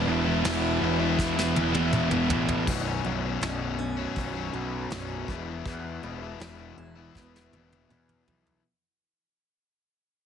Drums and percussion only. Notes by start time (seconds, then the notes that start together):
0.44 snare, crash
1.19 kick, snare
1.39 snare
1.56 high tom
1.74 high tom
1.93 mid tom
2.11 mid tom
2.30 floor tom
2.48 floor tom
2.67 kick, crash
3.43 snare
4.16 kick, open hi-hat
4.91 snare, open hi-hat
5.28 kick
5.65 kick, open hi-hat
6.41 snare
7.15 kick, snare
7.36 snare
7.53 high tom
7.72 high tom
7.90 mid tom
8.09 mid tom
8.28 floor tom
8.46 floor tom